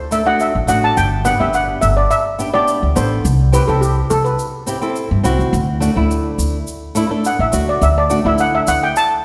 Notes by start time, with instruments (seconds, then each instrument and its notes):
Already playing: steel pan C5
0.11 nylon-string guitar A3 D4 A4, steel pan E5, shaker
0.25 nylon-string guitar A3 D4 F#4, steel pan F#5
0.40 steel pan E5, shaker
0.55 upright bass A1
0.67 upright bass A1, nylon-string guitar A3 D4 F#4, steel pan F#5, shaker
0.84 steel pan A5
0.97 upright bass G1, steel pan G5, shaker
1.24 nylon-string guitar B3 D4 G4, steel pan F#5, shaker
1.39 upright bass G1, nylon-string guitar B3 D4 G4, steel pan E5
1.54 steel pan F#5, shaker
1.81 upright bass G1, steel pan E5, shaker
1.97 steel pan D5
2.11 steel pan E5, shaker
2.39 nylon-string guitar B3 D4 G4, shaker
2.54 nylon-string guitar B3 D4 G4, steel pan D5
2.68 shaker
2.83 upright bass D2
2.95 upright bass A1, nylon-string guitar B3 D4 A4, steel pan C5, shaker
3.25 upright bass C2, shaker
3.52 nylon-string guitar C4 E4 G4, steel pan B4, shaker
3.68 upright bass C2, nylon-string guitar C4 E4 G4, steel pan A4, shaker
3.81 steel pan G4, shaker
4.10 upright bass C2, steel pan A4, shaker
4.24 steel pan B4, shaker
4.39 shaker
4.66 nylon-string guitar C4 E4 G4, shaker
4.81 nylon-string guitar C4 E4 A4, shaker
4.96 shaker
5.11 upright bass G2
5.23 upright bass C2, nylon-string guitar C4 E4 F#4, shaker
5.39 upright bass D2, shaker
5.53 upright bass D2, shaker
5.80 nylon-string guitar A3 D4 F#4, shaker
5.95 upright bass D2, nylon-string guitar A3 D4 E4
6.11 shaker
6.38 upright bass D2, shaker
6.67 shaker
6.95 nylon-string guitar A3 D4 E4, shaker
7.09 nylon-string guitar A3 D4 A4
7.25 steel pan F#5, shaker
7.39 upright bass A1, steel pan E5
7.52 upright bass D2, nylon-string guitar A3 D4 F#4, shaker
7.69 steel pan D5
7.82 upright bass D2, steel pan E5, shaker
7.98 steel pan D5
8.09 nylon-string guitar A3 D4 F#4, shaker
8.24 upright bass D2, nylon-string guitar A3 D4 E4, steel pan E5
8.38 steel pan F#5, shaker
8.55 steel pan E5
8.67 upright bass D2, steel pan F#5, shaker
8.83 steel pan G5
8.96 steel pan A5, shaker